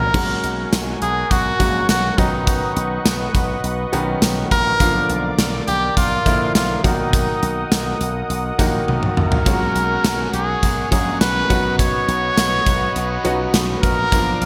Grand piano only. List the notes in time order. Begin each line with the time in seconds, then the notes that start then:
Already playing: F#3 A#3 C#4 F#4 F#5 A#5
0.14 F#3 G#3 A#3 C#4 F#4
1.59 F#3 G#3 A#3 C#4 F#4
2.18 D#3 F#3 B3 C#4 D#4
3.92 D#3 F#3 B3 C#4 F#4
4.80 D3 F3 A#3 D4 F4
6.25 D3 F3 A#3 D4 E4
6.83 D#3 F#3 A#3 D#4 F#4
8.58 D#3 F#3 A#3 D#4 F#4
9.46 F#3 G#3 A#3 C#4 F4
9.53 F#4
10.91 F#3 G#3 A#3 C#4 F#4
11.49 F#3 B3 C#4 D#4 F#4
13.24 F#3 B3 C#4 D#4 F#4
14.12 F3 A#3 D4 F4 A#4